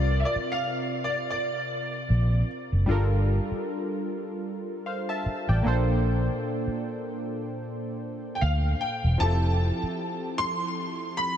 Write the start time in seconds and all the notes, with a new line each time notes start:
Already playing: C2 C3 C4 F4 A#4 D5
0.20 E5
0.25 D5
0.36 muted fingered electric bass stroke
0.52 F5
1.04 D5
1.30 D5
2.10 A#1
2.72 F#1
2.86 G1 G3 D4 F4 A4
2.91 A#4
3.51 muted fingered electric bass stroke
4.86 C5 F5
5.09 E5 A5
5.26 muted fingered electric bass stroke
5.49 A1 D5 G5
5.63 A#1 A#2 A#3 D4 A4
5.68 C5
6.67 muted fingered electric bass stroke
8.35 G5
8.41 D2 F5
8.81 G5
9.04 E1
9.18 F1 F3 C4 E4 G4 A5
9.23 A4
9.83 muted fingered electric bass stroke
10.38 C6
11.17 B5